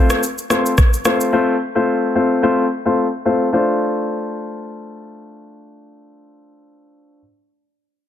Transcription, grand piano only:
Already playing: A3 C4 F4 C5
0.50 A3 C4 F4 C5
1.05 A3 C4 F4 C5
1.33 A3 C4 F4 C5
1.75 A3 C4 F4 C5
2.15 A3 C4 F4 C5
2.43 A3 C4 F4 C5
2.85 A3 C4 F4 C5
3.25 A3 C4 F4 C5
3.53 A3 D4 F4 C5

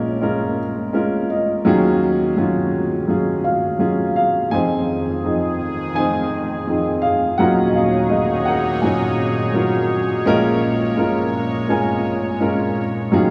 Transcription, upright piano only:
Already playing: A#1 A#2 G#3 C#4 F4 A#4
0.21 G#3 C#4 F4 A#4
0.93 G#3 C#4 F4 A#4
1.65 D#2 D#3 F#3 C#4 F4 G#4
2.37 F#3 C#4 F4 G#4
3.07 F#3 C#4 F4 G#4
3.79 F#3 C#4 F4 G#4
4.16 G#4 F5
4.51 F1 F2 F3 C4 D#4 G#4 C5 G#5
5.24 F3 C4 D#4 G#4
5.95 F3 C4 D#4 G#4 G#5
5.99 C5
6.67 F3 C4 D#4 G#4
7.02 F5
7.07 G#4
7.38 D#2 D#3 F#3 C#4 F4 G#4 A#4 F#5
7.68 D#5
7.75 G#4 F5
8.10 F#3 C#4 F#4 G#4 D#5 F5
8.45 A#4 F#5
8.82 F#3 C#4 F4 G#4 C#5 G#5
9.54 F#3 C#4 F4 A#4
10.26 A#1 A#2 G#3 C#4 F4 A#4
10.96 G#3 C#4 F4 A#4
11.68 G#3 C#4 F4 A#4
12.40 G#3 C#4 F4 A#4
13.12 D#2 D#3 F#3 C#4 F4 G#4

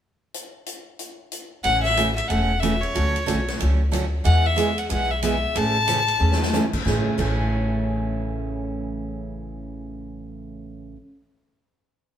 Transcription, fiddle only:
1.64 F#5
1.83 E5
2.16 E5
2.28 F#5
2.60 E5
2.81 C#5
4.25 F#5
4.46 E5
4.79 F#5
4.91 F#5
5.11 E5
5.24 E5
5.57 A5

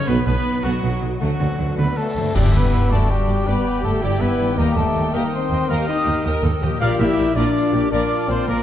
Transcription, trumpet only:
0.08 B4
0.27 B4
0.64 F#4
1.20 F#4
1.77 B4
1.97 A4
2.36 G4
2.54 B4
2.91 A4
3.10 G4
3.47 B4
3.84 A4
4.03 G4
4.21 B4
4.58 A#4
4.76 A4
5.14 A#4
5.32 C5
5.69 A#4
5.88 D#5
6.80 F5
6.99 E5
7.36 D5
7.92 D5
8.29 C5
8.48 A#4

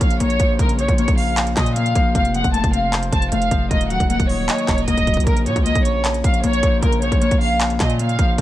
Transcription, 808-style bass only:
0.01 A#1
0.20 A#1
0.40 A#1
0.59 A#1
0.88 A#1
1.08 A#1
1.57 A#2
1.95 A#1
2.15 F1
2.44 F1
2.64 F1
3.12 F1
3.32 F1
3.51 F1
3.71 D#1
4.00 D#1
4.20 D#1
4.68 D#1
4.88 D#1
5.17 D#2
5.27 A#1
5.46 A#2
5.56 C#2
5.75 A#1
6.24 A#1
6.44 A#1
6.63 A#1
6.82 A#1
7.12 A#1
7.31 A#1
7.80 A#2
8.19 A#1
8.38 F1

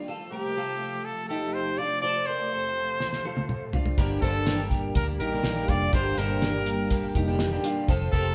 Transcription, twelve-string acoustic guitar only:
3.98 G2 D3 G3 A#3 D4 G4
4.21 G2 D3 G3 A#3 D4 G4
4.58 G3 A#3 D4 G4
4.95 G3 A#3 D4 G4
5.32 G2 D3 G3 A#3 D4 G4
5.56 G2 D3 G3 A#3 D4 G4
5.92 G2 D3 G3 A#3 D4 G4
6.17 G2 D3 G3 A#3 D4 G4
6.53 G3 A#3 D4 G4
6.90 G3 A#3 D4 G4
7.27 G2 D3 G3 A#3 D4 G4
7.52 G2 D3 G3 A#3 D4 G4
7.88 F3 C4 F4 A4
8.13 F3 C4 F4 A4

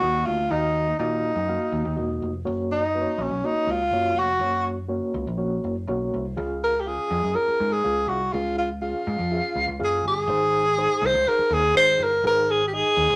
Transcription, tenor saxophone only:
Already playing: F#4
0.26 F4
0.51 D#4
0.99 D#4
2.72 D#4
3.22 C#4
3.46 D#4
3.70 F4
4.19 F#4
6.64 A#4
6.80 G4
6.88 G#4
7.35 A#4
7.72 G#4
8.09 F#4
8.33 F4
8.58 F4
8.82 F4
9.84 G#4
10.08 G#4
11.06 C5
11.28 A#4
11.53 G#4
11.77 C5
12.03 A#4
12.27 A#4
12.51 G#4
12.68 G4
12.74 G#4

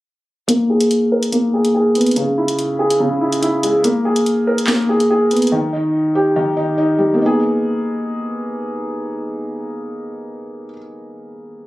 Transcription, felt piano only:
0.48 A#3
0.70 G#4
1.12 A#4
1.32 A#3
1.54 G#4
1.75 G#4
1.95 B3
2.17 C#3
2.38 E4
2.79 G#4
3.00 C#3
3.21 E4
3.42 E4
3.63 G#3
3.84 A#3
4.05 G#4
4.47 A#4
4.68 A#3
4.89 G#4
5.11 G#4
5.31 B3
5.52 D#3
5.73 D#4
6.15 G4
6.36 D#3
6.57 D#4
6.78 D#4
6.98 G3
7.14 A#3 B3
7.22 D#4
7.26 G#4

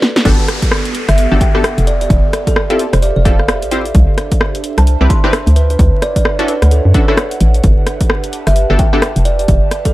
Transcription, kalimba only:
1.08 E5
1.41 G5
1.87 D5
2.01 D5
2.47 A4
2.93 C5
3.03 D5
3.16 D5
3.25 F5
3.39 F5
4.78 A5
5.10 C6
5.56 B4
5.70 B4
6.03 D5
6.16 D5
6.48 B4
6.62 B4
6.72 A4
8.47 E5
8.79 G5
9.25 D5
9.39 D5
9.85 A4

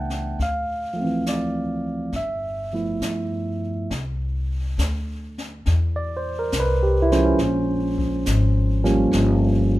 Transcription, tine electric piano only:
Already playing: E3 A3 B3 D4 F#5 G5 A5
0.42 F5
0.93 F3 A3
1.01 E3 C4
1.29 D5
2.16 E5
2.73 F3 A3 B3 E4
5.96 D5
6.17 C5
6.39 A#4
6.60 B4
6.83 G4
7.02 E4
7.11 F3 G#3 C#4 C5
7.25 C#4
8.84 F3 G3 A#3 C#4

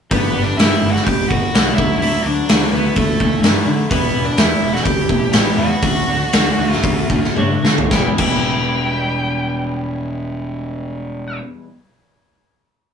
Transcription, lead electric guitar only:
0.12 B3 B4
0.44 D4 D5
0.57 E4 E5
0.91 F#4 F#5
1.04 G5
1.08 G4
1.28 F#4 F#5
1.75 E5
1.79 E4
1.99 E4 E5
2.22 D5
2.27 D4
2.72 B3 B4
2.96 A3 A4
3.91 B3 B4
4.25 D4 D5
4.38 E4 E5
4.74 F#4 F#5
4.83 G4 G5
5.32 G4 G5
5.57 F#4 F#5
6.73 E5
7.91 G5
8.18 G5

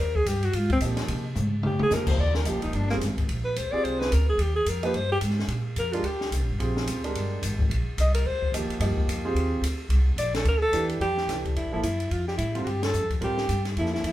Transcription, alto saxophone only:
0.00 A#4
0.16 G#4
0.27 G4
0.44 F#4
0.56 F4
0.73 C4
1.66 G4
1.83 G#4
1.94 A#4
2.08 C5
2.20 D5
2.36 A#4
2.48 G4
2.63 D#4
2.75 D4
2.90 A#3
3.45 B4
3.58 C5
3.72 D5
3.84 C5
4.00 B4
4.13 A#4
4.29 G#4
4.41 G4
4.56 G#4
4.69 A#4
4.85 B4
4.96 C5
5.12 G4
5.79 A#4
5.93 F4
6.05 G4
8.01 D#5
8.15 A#4
8.27 C5
10.18 D5
10.36 A4
10.48 A#4
10.62 A4
11.02 G4
11.56 E4
11.73 E4
11.83 E4
12.11 F4
12.28 G4
12.37 E4
12.64 F#4 G4
12.83 A4
13.24 G4
13.79 E4
13.93 E4
14.06 E4

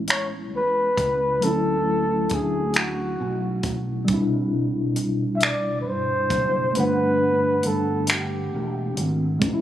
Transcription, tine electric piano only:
Already playing: G#3 B3 C#4 E4
1.39 F#3 A3
1.44 C#4 E4
4.05 B2 G3
4.10 D4 E4
6.72 A3 A#3
6.77 D4 F#5
6.81 B3
9.39 G#3 B3
9.44 C#4 D#4
9.53 E4

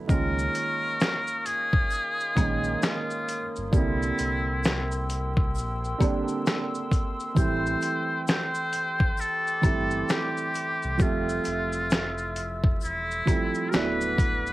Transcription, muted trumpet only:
0.10 A#4
1.46 G#4
2.83 F4
3.74 E4
7.38 C5
8.29 C5
9.20 A4
10.11 G4
11.02 F4
12.83 E4
13.70 A#4
13.74 B4

